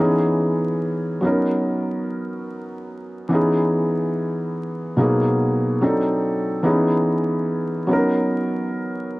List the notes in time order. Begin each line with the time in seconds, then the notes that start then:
Already playing: E3 B3
0.00 C#4 D#4 G#4
1.21 F#3 B3 C#4
1.25 D#4 A#4
3.29 E3 B3 C#4
3.33 D#4 G#4
4.97 B2 F#3 A#3 B3 D#4 G#4
5.81 F#3 C4 D4 D#4 A4
6.63 E3 B3 C#4 D#4 G#4
7.87 F#3 B3 C#4
7.91 D#4 A#4